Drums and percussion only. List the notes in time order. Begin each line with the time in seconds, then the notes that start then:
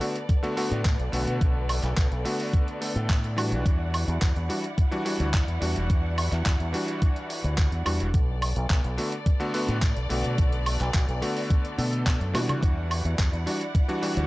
0.01 open hi-hat
0.15 closed hi-hat
0.29 kick, closed hi-hat
0.44 closed hi-hat
0.57 open hi-hat
0.72 closed hi-hat
0.85 kick, clap, closed hi-hat
0.99 closed hi-hat
1.13 open hi-hat
1.28 closed hi-hat
1.41 kick, closed hi-hat
1.69 open hi-hat, high woodblock
1.83 clap, closed hi-hat
1.97 kick, clap, closed hi-hat
2.12 closed hi-hat
2.25 open hi-hat
2.40 open hi-hat
2.53 kick, closed hi-hat
2.68 closed hi-hat
2.82 open hi-hat
2.96 closed hi-hat
3.10 kick, clap, closed hi-hat
3.24 closed hi-hat
3.38 open hi-hat, high woodblock
3.52 closed hi-hat
3.66 kick, closed hi-hat
3.94 open hi-hat, high woodblock
4.08 closed hi-hat
4.22 kick, clap, closed hi-hat
4.36 closed hi-hat
4.50 open hi-hat
4.64 closed hi-hat
4.78 kick, closed hi-hat
4.92 closed hi-hat
5.06 open hi-hat
5.20 closed hi-hat
5.34 kick, clap, closed hi-hat
5.48 closed hi-hat
5.62 open hi-hat
5.76 closed hi-hat
5.90 kick, closed hi-hat
6.18 open hi-hat, high woodblock
6.32 clap, closed hi-hat
6.46 kick, clap, closed hi-hat
6.60 closed hi-hat
6.74 open hi-hat
6.88 closed hi-hat
7.02 kick, closed hi-hat
7.16 closed hi-hat
7.30 open hi-hat
7.44 closed hi-hat
7.58 kick, clap, closed hi-hat
7.72 closed hi-hat
7.86 open hi-hat, high woodblock
8.00 closed hi-hat
8.14 kick, closed hi-hat
8.42 open hi-hat, high woodblock
8.56 closed hi-hat
8.70 kick, clap, closed hi-hat
8.84 closed hi-hat
8.98 open hi-hat
9.12 closed hi-hat
9.26 kick, closed hi-hat
9.40 closed hi-hat
9.54 open hi-hat
9.69 closed hi-hat
9.82 kick, clap, closed hi-hat
9.97 closed hi-hat
10.10 open hi-hat
10.24 closed hi-hat
10.38 kick, closed hi-hat
10.52 closed hi-hat
10.66 open hi-hat, high woodblock
10.81 clap, closed hi-hat
10.94 kick, clap, closed hi-hat
11.09 closed hi-hat
11.22 open hi-hat
11.37 open hi-hat
11.50 kick, closed hi-hat
11.65 closed hi-hat
11.79 open hi-hat
11.93 closed hi-hat
12.06 kick, clap, closed hi-hat
12.21 closed hi-hat
12.35 snare, open hi-hat, high woodblock
12.49 closed hi-hat, mid tom, high woodblock
12.63 kick, closed hi-hat
12.91 open hi-hat, high woodblock
13.05 closed hi-hat
13.19 kick, clap, closed hi-hat
13.33 closed hi-hat
13.47 open hi-hat
13.61 closed hi-hat
13.75 kick, closed hi-hat
13.89 closed hi-hat
14.03 open hi-hat
14.17 closed hi-hat